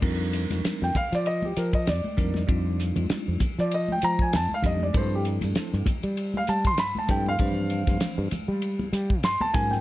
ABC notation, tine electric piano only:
X:1
M:4/4
L:1/8
Q:"Swing 16ths" 1/4=98
K:Fmix
V:1 name="Tine electric piano"
[G,CDEB]3 z4 [G,CDEB] | [G,CDEF]3 z4 [G,CDEG] | [F,CD=EA]3 z4 [F,CDEA] | [=E,F,CDc]3 z4 [_G,_D_EFB] |]